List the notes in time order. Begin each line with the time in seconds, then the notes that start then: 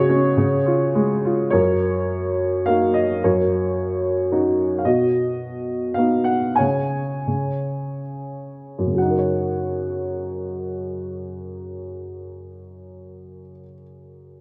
Already playing: C#3 F#4 G#4 C#5
0.10 C#4
0.37 C#3
0.66 F4
0.95 G#3
1.25 F4
1.50 F#2 A#4 C#5
2.66 A#3 D#4 F#4 F5
2.94 D#5
3.24 F#2 A#4 C#5
4.32 C#4 D#4 F#4
4.78 F5
4.84 B2 F#4 D#5
5.94 B3 D#4 F5
5.98 F#4
6.24 F#5
6.56 C#5 G#5
6.60 C#3
7.27 C#3
8.79 F#2
8.87 C#3
8.95 F#3 F#5
9.02 D#4
9.10 A#4
9.18 C#5